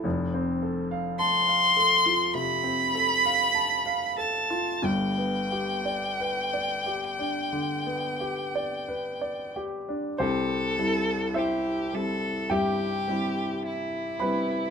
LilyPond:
<<
  \new Staff \with { instrumentName = "Violin" } { \time 4/4 \key c \major \tempo 4 = 50 r4 c'''4 b''4. a''8 | g''2.~ g''8 r8 | a'4 g'8 a'8 g'4 e'4 | }
  \new Staff \with { instrumentName = "Grand piano" } { \time 4/4 \key c \major << { r1 | r1 | <c' g' c''>4 <e' c'' e''>4 <g' e'' g''>4. <b' b''>8 | } \\ { <f,, f,>16 c'16 a'16 f''16 a''16 f''16 a'16 f'16 c16 c'16 a'16 f''16 a''16 f''16 a'16 f'16 | <g,, g,>16 b16 g'16 d''16 b'16 d''16 g'16 d'16 d16 b16 g'16 d''16 b'16 d''16 g'16 d'16 | c,8 <g c' e'>4 <g c' e'>8 g,8 <g c' e'>4 <g c' e'>8 | } >> }
>>